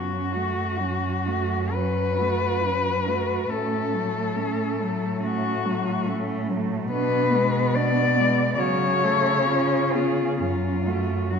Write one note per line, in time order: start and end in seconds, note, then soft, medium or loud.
0.00 3.48 F#2 soft
0.00 0.36 F#3 soft
0.00 0.35 C#4 soft
0.00 1.75 F#4 medium
0.33 0.80 A3 soft
0.33 0.81 F#4 soft
0.79 1.28 F#3 soft
0.79 1.29 C#4 soft
1.26 1.74 A3 soft
1.26 1.74 F#4 soft
1.73 2.22 F#3 soft
1.73 2.21 C#4 soft
1.73 3.52 B4 medium
2.19 2.65 A3 soft
2.19 2.67 F#4 soft
2.63 3.08 F#3 soft
2.63 3.10 C#4 soft
3.07 3.50 A3 soft
3.07 3.51 F#4 soft
3.50 6.89 A2 soft
3.50 3.95 A3 soft
3.50 3.96 C#4 soft
3.50 5.23 A4 medium
3.93 4.38 F#3 soft
3.93 4.37 A3 soft
4.36 4.82 A3 soft
4.36 4.81 C#4 soft
4.80 5.21 F#3 soft
4.80 5.22 A3 soft
5.22 5.66 A3 soft
5.22 5.67 C#4 soft
5.22 6.07 F#4 medium
5.65 6.08 F#3 soft
5.65 6.08 A3 soft
6.06 6.50 A3 soft
6.06 6.52 C#4 soft
6.48 6.90 F#3 soft
6.48 6.92 A3 soft
6.91 8.58 B2 medium
6.91 7.35 B3 medium
6.91 7.35 D4 soft
6.91 7.76 B4 medium
7.34 7.76 G#3 soft
7.34 7.77 B3 soft
7.74 8.20 B3 soft
7.74 8.18 D4 soft
7.74 8.53 D5 medium
8.17 8.61 G#3 soft
8.17 8.59 B3 soft
8.54 8.62 D5 medium
8.59 10.41 C#3 medium
8.59 9.05 F#3 soft
8.59 9.05 F#4 soft
8.59 9.95 C#5 medium
9.03 9.48 A3 soft
9.03 9.48 A4 soft
9.49 9.95 C#4 soft
9.49 9.96 F4 soft
9.93 10.40 B3 soft
9.93 10.38 F4 medium
9.93 10.40 G#4 soft
10.39 11.39 F#2 soft
10.39 10.88 F#3 soft
10.39 10.90 C#4 soft
10.39 11.31 F4 medium
10.86 11.33 A3 soft
10.86 11.36 F#4 soft
11.30 11.39 F#3 soft
11.30 11.39 F#4 soft
11.34 11.39 C#4 soft